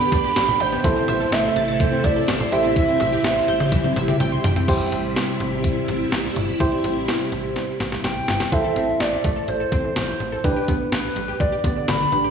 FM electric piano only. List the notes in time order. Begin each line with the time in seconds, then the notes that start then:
Already playing: D4 G4 B4
0.84 E4 A4 C5
2.52 E4 G4 C5
4.68 E4 G4 C5
6.60 E4 G4 C5
8.52 E4 A4 C5
10.44 D4 G4 B4
12.12 D4 G4 B4